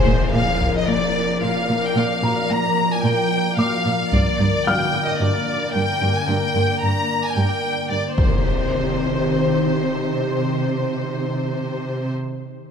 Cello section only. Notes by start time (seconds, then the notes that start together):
0.07 A#2
0.34 A#2
0.88 A#2
1.42 A#2
1.69 A#2
1.96 A#2
2.23 A#2
2.50 A#2
3.04 A#2
3.58 A#2
3.85 A#2
4.12 G2
4.39 G2
4.66 G2
5.20 G2
5.75 G2
6.01 G2
6.28 G2
6.55 G2
6.82 G2
7.36 G2
7.90 G2
8.17 C3